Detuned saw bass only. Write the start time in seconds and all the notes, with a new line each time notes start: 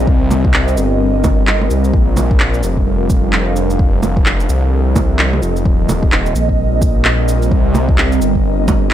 0.07 C2
0.77 G1
1.70 C2
1.94 A#1
2.63 F1
3.79 F1
4.49 C2
5.42 F1
5.65 D#1
6.35 A#1
7.51 C2
8.21 G1